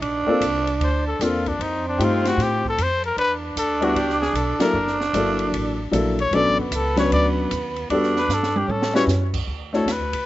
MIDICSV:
0, 0, Header, 1, 7, 480
1, 0, Start_track
1, 0, Tempo, 393959
1, 27, Time_signature, 4, 2, 24, 8
1, 12500, End_track
2, 0, Start_track
2, 0, Title_t, "Trumpet"
2, 0, Program_c, 0, 56
2, 1018, Note_on_c, 0, 72, 74
2, 1288, Note_off_c, 0, 72, 0
2, 1307, Note_on_c, 0, 69, 79
2, 1496, Note_on_c, 0, 65, 75
2, 1514, Note_off_c, 0, 69, 0
2, 1803, Note_on_c, 0, 62, 79
2, 1822, Note_off_c, 0, 65, 0
2, 1977, Note_on_c, 0, 63, 89
2, 1996, Note_off_c, 0, 62, 0
2, 2267, Note_off_c, 0, 63, 0
2, 2297, Note_on_c, 0, 62, 69
2, 2485, Note_on_c, 0, 65, 77
2, 2503, Note_off_c, 0, 62, 0
2, 2774, Note_on_c, 0, 66, 82
2, 2793, Note_off_c, 0, 65, 0
2, 2960, Note_on_c, 0, 67, 79
2, 2978, Note_off_c, 0, 66, 0
2, 3238, Note_off_c, 0, 67, 0
2, 3273, Note_on_c, 0, 69, 85
2, 3443, Note_on_c, 0, 72, 92
2, 3461, Note_off_c, 0, 69, 0
2, 3715, Note_off_c, 0, 72, 0
2, 3723, Note_on_c, 0, 70, 79
2, 3868, Note_off_c, 0, 70, 0
2, 3883, Note_on_c, 0, 71, 94
2, 4060, Note_off_c, 0, 71, 0
2, 4363, Note_on_c, 0, 69, 81
2, 4674, Note_on_c, 0, 66, 77
2, 4693, Note_off_c, 0, 69, 0
2, 4849, Note_on_c, 0, 67, 76
2, 4867, Note_off_c, 0, 66, 0
2, 5118, Note_off_c, 0, 67, 0
2, 5126, Note_on_c, 0, 68, 80
2, 5314, Note_on_c, 0, 69, 71
2, 5333, Note_off_c, 0, 68, 0
2, 5615, Note_off_c, 0, 69, 0
2, 5623, Note_on_c, 0, 70, 87
2, 6063, Note_off_c, 0, 70, 0
2, 7564, Note_on_c, 0, 73, 89
2, 7735, Note_on_c, 0, 74, 99
2, 7753, Note_off_c, 0, 73, 0
2, 8026, Note_off_c, 0, 74, 0
2, 8044, Note_on_c, 0, 66, 51
2, 8221, Note_on_c, 0, 69, 81
2, 8239, Note_off_c, 0, 66, 0
2, 8509, Note_off_c, 0, 69, 0
2, 8518, Note_on_c, 0, 73, 84
2, 8666, Note_off_c, 0, 73, 0
2, 8695, Note_on_c, 0, 74, 84
2, 8870, Note_off_c, 0, 74, 0
2, 9967, Note_on_c, 0, 71, 82
2, 10157, Note_on_c, 0, 69, 74
2, 10175, Note_off_c, 0, 71, 0
2, 10447, Note_on_c, 0, 67, 73
2, 10465, Note_off_c, 0, 69, 0
2, 10611, Note_on_c, 0, 69, 76
2, 10630, Note_off_c, 0, 67, 0
2, 10906, Note_off_c, 0, 69, 0
2, 10916, Note_on_c, 0, 73, 88
2, 11013, Note_off_c, 0, 73, 0
2, 11883, Note_on_c, 0, 69, 72
2, 12083, Note_on_c, 0, 71, 72
2, 12102, Note_off_c, 0, 69, 0
2, 12500, Note_off_c, 0, 71, 0
2, 12500, End_track
3, 0, Start_track
3, 0, Title_t, "Grand piano"
3, 0, Program_c, 1, 0
3, 327, Note_on_c, 1, 60, 69
3, 328, Note_on_c, 1, 58, 78
3, 340, Note_on_c, 1, 62, 68
3, 347, Note_on_c, 1, 65, 66
3, 350, Note_on_c, 1, 69, 77
3, 486, Note_off_c, 1, 58, 0
3, 486, Note_off_c, 1, 60, 0
3, 492, Note_off_c, 1, 62, 0
3, 496, Note_off_c, 1, 65, 0
3, 497, Note_off_c, 1, 69, 0
3, 1471, Note_on_c, 1, 58, 59
3, 1477, Note_on_c, 1, 60, 52
3, 1488, Note_on_c, 1, 62, 50
3, 1488, Note_on_c, 1, 65, 49
3, 1496, Note_on_c, 1, 69, 62
3, 1744, Note_off_c, 1, 58, 0
3, 1747, Note_off_c, 1, 60, 0
3, 1752, Note_off_c, 1, 62, 0
3, 1752, Note_off_c, 1, 65, 0
3, 1756, Note_off_c, 1, 69, 0
3, 2413, Note_on_c, 1, 57, 63
3, 2417, Note_on_c, 1, 60, 61
3, 2427, Note_on_c, 1, 63, 62
3, 2428, Note_on_c, 1, 67, 68
3, 2430, Note_on_c, 1, 65, 59
3, 3143, Note_off_c, 1, 57, 0
3, 3145, Note_off_c, 1, 60, 0
3, 3150, Note_off_c, 1, 63, 0
3, 3151, Note_off_c, 1, 67, 0
3, 3152, Note_off_c, 1, 65, 0
3, 4640, Note_on_c, 1, 55, 72
3, 4643, Note_on_c, 1, 59, 64
3, 4649, Note_on_c, 1, 62, 65
3, 4653, Note_on_c, 1, 64, 64
3, 4656, Note_on_c, 1, 66, 77
3, 4800, Note_off_c, 1, 55, 0
3, 4802, Note_off_c, 1, 59, 0
3, 4805, Note_off_c, 1, 62, 0
3, 4806, Note_off_c, 1, 64, 0
3, 4808, Note_off_c, 1, 66, 0
3, 5600, Note_on_c, 1, 54, 69
3, 5605, Note_on_c, 1, 58, 63
3, 5610, Note_on_c, 1, 62, 63
3, 5620, Note_on_c, 1, 64, 62
3, 5623, Note_on_c, 1, 69, 75
3, 5760, Note_off_c, 1, 54, 0
3, 5763, Note_off_c, 1, 58, 0
3, 5765, Note_off_c, 1, 62, 0
3, 5770, Note_off_c, 1, 64, 0
3, 5771, Note_off_c, 1, 69, 0
3, 6266, Note_on_c, 1, 58, 55
3, 6267, Note_on_c, 1, 54, 62
3, 6269, Note_on_c, 1, 62, 62
3, 6273, Note_on_c, 1, 64, 59
3, 6282, Note_on_c, 1, 69, 73
3, 6989, Note_off_c, 1, 58, 0
3, 6990, Note_off_c, 1, 54, 0
3, 6991, Note_off_c, 1, 62, 0
3, 6993, Note_off_c, 1, 64, 0
3, 6998, Note_off_c, 1, 69, 0
3, 7206, Note_on_c, 1, 54, 65
3, 7217, Note_on_c, 1, 62, 59
3, 7220, Note_on_c, 1, 58, 60
3, 7231, Note_on_c, 1, 69, 76
3, 7233, Note_on_c, 1, 64, 56
3, 7490, Note_off_c, 1, 54, 0
3, 7496, Note_off_c, 1, 62, 0
3, 7497, Note_off_c, 1, 58, 0
3, 7503, Note_off_c, 1, 69, 0
3, 7504, Note_off_c, 1, 64, 0
3, 7709, Note_on_c, 1, 54, 64
3, 7711, Note_on_c, 1, 59, 60
3, 7720, Note_on_c, 1, 61, 57
3, 7729, Note_on_c, 1, 62, 63
3, 7733, Note_on_c, 1, 69, 70
3, 7982, Note_off_c, 1, 54, 0
3, 7983, Note_off_c, 1, 59, 0
3, 7987, Note_off_c, 1, 61, 0
3, 7992, Note_off_c, 1, 62, 0
3, 7994, Note_off_c, 1, 69, 0
3, 8484, Note_on_c, 1, 54, 65
3, 8490, Note_on_c, 1, 59, 58
3, 8498, Note_on_c, 1, 61, 61
3, 8499, Note_on_c, 1, 62, 60
3, 8508, Note_on_c, 1, 71, 74
3, 9106, Note_off_c, 1, 54, 0
3, 9109, Note_off_c, 1, 59, 0
3, 9113, Note_off_c, 1, 61, 0
3, 9114, Note_off_c, 1, 62, 0
3, 9118, Note_off_c, 1, 71, 0
3, 9633, Note_on_c, 1, 55, 67
3, 9645, Note_on_c, 1, 62, 59
3, 9647, Note_on_c, 1, 59, 61
3, 9657, Note_on_c, 1, 66, 57
3, 9658, Note_on_c, 1, 69, 72
3, 9905, Note_off_c, 1, 55, 0
3, 9911, Note_off_c, 1, 62, 0
3, 9912, Note_off_c, 1, 59, 0
3, 9917, Note_off_c, 1, 66, 0
3, 9917, Note_off_c, 1, 69, 0
3, 10891, Note_on_c, 1, 55, 74
3, 10893, Note_on_c, 1, 61, 67
3, 10902, Note_on_c, 1, 64, 65
3, 10908, Note_on_c, 1, 66, 68
3, 10911, Note_on_c, 1, 71, 75
3, 11048, Note_off_c, 1, 55, 0
3, 11049, Note_off_c, 1, 61, 0
3, 11053, Note_off_c, 1, 64, 0
3, 11056, Note_off_c, 1, 66, 0
3, 11058, Note_off_c, 1, 71, 0
3, 11851, Note_on_c, 1, 57, 62
3, 11864, Note_on_c, 1, 62, 56
3, 11867, Note_on_c, 1, 64, 59
3, 11873, Note_on_c, 1, 66, 60
3, 11876, Note_on_c, 1, 73, 71
3, 12009, Note_off_c, 1, 57, 0
3, 12016, Note_off_c, 1, 62, 0
3, 12017, Note_off_c, 1, 64, 0
3, 12020, Note_off_c, 1, 66, 0
3, 12022, Note_off_c, 1, 73, 0
3, 12500, End_track
4, 0, Start_track
4, 0, Title_t, "Tenor saxophone"
4, 0, Program_c, 2, 66
4, 19, Note_on_c, 2, 62, 112
4, 1608, Note_off_c, 2, 62, 0
4, 1944, Note_on_c, 2, 60, 100
4, 3640, Note_off_c, 2, 60, 0
4, 3871, Note_on_c, 2, 62, 102
4, 5737, Note_off_c, 2, 62, 0
4, 5786, Note_on_c, 2, 62, 106
4, 7372, Note_off_c, 2, 62, 0
4, 7697, Note_on_c, 2, 59, 100
4, 9573, Note_off_c, 2, 59, 0
4, 9627, Note_on_c, 2, 62, 98
4, 10572, Note_on_c, 2, 61, 77
4, 10591, Note_off_c, 2, 62, 0
4, 11367, Note_off_c, 2, 61, 0
4, 12500, End_track
5, 0, Start_track
5, 0, Title_t, "Upright bass"
5, 0, Program_c, 3, 32
5, 11, Note_on_c, 3, 34, 76
5, 303, Note_off_c, 3, 34, 0
5, 495, Note_on_c, 3, 36, 82
5, 962, Note_off_c, 3, 36, 0
5, 969, Note_on_c, 3, 38, 74
5, 1442, Note_off_c, 3, 38, 0
5, 1455, Note_on_c, 3, 40, 84
5, 1925, Note_off_c, 3, 40, 0
5, 1940, Note_on_c, 3, 41, 80
5, 2407, Note_off_c, 3, 41, 0
5, 2421, Note_on_c, 3, 43, 76
5, 2884, Note_off_c, 3, 43, 0
5, 2892, Note_on_c, 3, 45, 81
5, 3362, Note_off_c, 3, 45, 0
5, 3384, Note_on_c, 3, 41, 83
5, 3849, Note_off_c, 3, 41, 0
5, 3858, Note_on_c, 3, 40, 77
5, 4325, Note_off_c, 3, 40, 0
5, 4333, Note_on_c, 3, 38, 80
5, 4800, Note_off_c, 3, 38, 0
5, 4808, Note_on_c, 3, 37, 78
5, 5268, Note_off_c, 3, 37, 0
5, 5276, Note_on_c, 3, 35, 82
5, 5573, Note_off_c, 3, 35, 0
5, 5768, Note_on_c, 3, 30, 83
5, 6240, Note_off_c, 3, 30, 0
5, 6254, Note_on_c, 3, 31, 75
5, 6720, Note_off_c, 3, 31, 0
5, 6727, Note_on_c, 3, 33, 79
5, 7200, Note_off_c, 3, 33, 0
5, 7208, Note_on_c, 3, 34, 85
5, 7681, Note_off_c, 3, 34, 0
5, 7689, Note_on_c, 3, 35, 83
5, 7865, Note_off_c, 3, 35, 0
5, 7865, Note_on_c, 3, 33, 56
5, 8013, Note_off_c, 3, 33, 0
5, 8020, Note_on_c, 3, 30, 65
5, 8170, Note_off_c, 3, 30, 0
5, 8177, Note_on_c, 3, 37, 82
5, 8646, Note_off_c, 3, 37, 0
5, 8665, Note_on_c, 3, 38, 85
5, 9130, Note_off_c, 3, 38, 0
5, 9156, Note_on_c, 3, 39, 88
5, 9616, Note_off_c, 3, 39, 0
5, 9621, Note_on_c, 3, 40, 80
5, 10083, Note_off_c, 3, 40, 0
5, 10090, Note_on_c, 3, 43, 82
5, 10564, Note_off_c, 3, 43, 0
5, 10574, Note_on_c, 3, 45, 81
5, 11039, Note_off_c, 3, 45, 0
5, 11047, Note_on_c, 3, 42, 84
5, 11523, Note_off_c, 3, 42, 0
5, 11541, Note_on_c, 3, 38, 78
5, 12003, Note_off_c, 3, 38, 0
5, 12010, Note_on_c, 3, 40, 71
5, 12170, Note_off_c, 3, 40, 0
5, 12170, Note_on_c, 3, 38, 52
5, 12329, Note_off_c, 3, 38, 0
5, 12337, Note_on_c, 3, 37, 57
5, 12492, Note_off_c, 3, 37, 0
5, 12500, End_track
6, 0, Start_track
6, 0, Title_t, "Muted upright bass strokes"
6, 328, Note_on_c, 9, 29, 36
6, 450, Note_off_c, 9, 29, 0
6, 5588, Note_on_c, 9, 29, 38
6, 5710, Note_off_c, 9, 29, 0
6, 12500, End_track
7, 0, Start_track
7, 0, Title_t, "Drums"
7, 27, Note_on_c, 9, 51, 57
7, 149, Note_off_c, 9, 51, 0
7, 505, Note_on_c, 9, 44, 57
7, 505, Note_on_c, 9, 51, 72
7, 627, Note_off_c, 9, 44, 0
7, 627, Note_off_c, 9, 51, 0
7, 819, Note_on_c, 9, 51, 46
7, 941, Note_off_c, 9, 51, 0
7, 988, Note_on_c, 9, 51, 57
7, 1109, Note_off_c, 9, 51, 0
7, 1471, Note_on_c, 9, 38, 33
7, 1471, Note_on_c, 9, 44, 55
7, 1471, Note_on_c, 9, 51, 63
7, 1593, Note_off_c, 9, 38, 0
7, 1593, Note_off_c, 9, 44, 0
7, 1593, Note_off_c, 9, 51, 0
7, 1781, Note_on_c, 9, 51, 43
7, 1782, Note_on_c, 9, 36, 46
7, 1903, Note_off_c, 9, 51, 0
7, 1904, Note_off_c, 9, 36, 0
7, 1958, Note_on_c, 9, 51, 62
7, 2080, Note_off_c, 9, 51, 0
7, 2442, Note_on_c, 9, 44, 53
7, 2442, Note_on_c, 9, 51, 69
7, 2564, Note_off_c, 9, 44, 0
7, 2564, Note_off_c, 9, 51, 0
7, 2746, Note_on_c, 9, 38, 58
7, 2746, Note_on_c, 9, 51, 48
7, 2867, Note_off_c, 9, 38, 0
7, 2867, Note_off_c, 9, 51, 0
7, 2922, Note_on_c, 9, 38, 36
7, 2922, Note_on_c, 9, 51, 54
7, 3044, Note_off_c, 9, 38, 0
7, 3044, Note_off_c, 9, 51, 0
7, 3224, Note_on_c, 9, 36, 52
7, 3345, Note_off_c, 9, 36, 0
7, 3391, Note_on_c, 9, 44, 49
7, 3391, Note_on_c, 9, 51, 70
7, 3513, Note_off_c, 9, 44, 0
7, 3513, Note_off_c, 9, 51, 0
7, 3698, Note_on_c, 9, 51, 41
7, 3820, Note_off_c, 9, 51, 0
7, 3875, Note_on_c, 9, 51, 57
7, 3997, Note_off_c, 9, 51, 0
7, 4348, Note_on_c, 9, 44, 61
7, 4348, Note_on_c, 9, 51, 68
7, 4470, Note_off_c, 9, 44, 0
7, 4470, Note_off_c, 9, 51, 0
7, 4656, Note_on_c, 9, 51, 49
7, 4778, Note_off_c, 9, 51, 0
7, 4828, Note_on_c, 9, 51, 59
7, 4950, Note_off_c, 9, 51, 0
7, 4990, Note_on_c, 9, 38, 27
7, 5112, Note_off_c, 9, 38, 0
7, 5145, Note_on_c, 9, 38, 43
7, 5267, Note_off_c, 9, 38, 0
7, 5304, Note_on_c, 9, 44, 55
7, 5304, Note_on_c, 9, 51, 60
7, 5425, Note_off_c, 9, 44, 0
7, 5425, Note_off_c, 9, 51, 0
7, 5606, Note_on_c, 9, 38, 71
7, 5606, Note_on_c, 9, 51, 58
7, 5727, Note_off_c, 9, 38, 0
7, 5727, Note_off_c, 9, 51, 0
7, 5937, Note_on_c, 9, 38, 31
7, 6059, Note_off_c, 9, 38, 0
7, 6100, Note_on_c, 9, 38, 45
7, 6222, Note_off_c, 9, 38, 0
7, 6262, Note_on_c, 9, 44, 57
7, 6262, Note_on_c, 9, 51, 66
7, 6384, Note_off_c, 9, 44, 0
7, 6384, Note_off_c, 9, 51, 0
7, 6566, Note_on_c, 9, 51, 46
7, 6687, Note_off_c, 9, 51, 0
7, 6746, Note_on_c, 9, 51, 63
7, 6868, Note_off_c, 9, 51, 0
7, 7227, Note_on_c, 9, 44, 55
7, 7227, Note_on_c, 9, 51, 66
7, 7349, Note_off_c, 9, 44, 0
7, 7349, Note_off_c, 9, 51, 0
7, 7539, Note_on_c, 9, 51, 42
7, 7661, Note_off_c, 9, 51, 0
7, 7709, Note_on_c, 9, 51, 56
7, 7831, Note_off_c, 9, 51, 0
7, 8184, Note_on_c, 9, 44, 65
7, 8184, Note_on_c, 9, 51, 73
7, 8306, Note_off_c, 9, 44, 0
7, 8306, Note_off_c, 9, 51, 0
7, 8495, Note_on_c, 9, 38, 55
7, 8495, Note_on_c, 9, 51, 50
7, 8617, Note_off_c, 9, 38, 0
7, 8617, Note_off_c, 9, 51, 0
7, 8675, Note_on_c, 9, 51, 62
7, 8797, Note_off_c, 9, 51, 0
7, 9149, Note_on_c, 9, 44, 48
7, 9149, Note_on_c, 9, 51, 68
7, 9271, Note_off_c, 9, 44, 0
7, 9271, Note_off_c, 9, 51, 0
7, 9457, Note_on_c, 9, 51, 39
7, 9579, Note_off_c, 9, 51, 0
7, 9627, Note_on_c, 9, 51, 58
7, 9749, Note_off_c, 9, 51, 0
7, 9786, Note_on_c, 9, 38, 30
7, 9908, Note_off_c, 9, 38, 0
7, 9943, Note_on_c, 9, 38, 46
7, 10065, Note_off_c, 9, 38, 0
7, 10109, Note_on_c, 9, 38, 50
7, 10109, Note_on_c, 9, 44, 68
7, 10231, Note_off_c, 9, 38, 0
7, 10231, Note_off_c, 9, 44, 0
7, 10272, Note_on_c, 9, 38, 54
7, 10394, Note_off_c, 9, 38, 0
7, 10428, Note_on_c, 9, 48, 76
7, 10549, Note_off_c, 9, 48, 0
7, 10594, Note_on_c, 9, 48, 64
7, 10715, Note_off_c, 9, 48, 0
7, 10750, Note_on_c, 9, 38, 71
7, 10872, Note_off_c, 9, 38, 0
7, 10908, Note_on_c, 9, 38, 79
7, 11030, Note_off_c, 9, 38, 0
7, 11069, Note_on_c, 9, 38, 51
7, 11069, Note_on_c, 9, 44, 57
7, 11191, Note_off_c, 9, 38, 0
7, 11191, Note_off_c, 9, 44, 0
7, 11376, Note_on_c, 9, 36, 68
7, 11376, Note_on_c, 9, 49, 72
7, 11498, Note_off_c, 9, 36, 0
7, 11498, Note_off_c, 9, 49, 0
7, 11860, Note_on_c, 9, 38, 32
7, 11982, Note_off_c, 9, 38, 0
7, 12035, Note_on_c, 9, 38, 63
7, 12035, Note_on_c, 9, 44, 51
7, 12035, Note_on_c, 9, 51, 66
7, 12157, Note_off_c, 9, 38, 0
7, 12157, Note_off_c, 9, 44, 0
7, 12157, Note_off_c, 9, 51, 0
7, 12344, Note_on_c, 9, 51, 66
7, 12466, Note_off_c, 9, 51, 0
7, 12500, End_track
0, 0, End_of_file